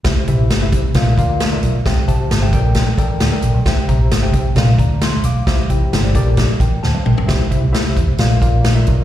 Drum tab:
HH |x-x-x-x-x-x-x-x-|x-x-x-x-x-x-x-x-|x-x-x-x-x-x-x-x-|x-x-x-x-x-x-----|
SD |o---o---o---o---|o---o---o---o---|o---o---o---o---|o---o---o---o---|
T1 |----------------|----------------|----------------|-------------o--|
T2 |----------------|----------------|----------------|--------------o-|
FT |----------------|----------------|----------------|---------------o|
BD |o-o---o-o-o-----|o-o---o-o-o-----|o-o---o-o-o-----|o-o---o-o-o-----|

HH |x-x-x-x-x-x-x-x-|
SD |o---o---o---o---|
T1 |----------------|
T2 |----------------|
FT |----------------|
BD |o-o---o---o---o-|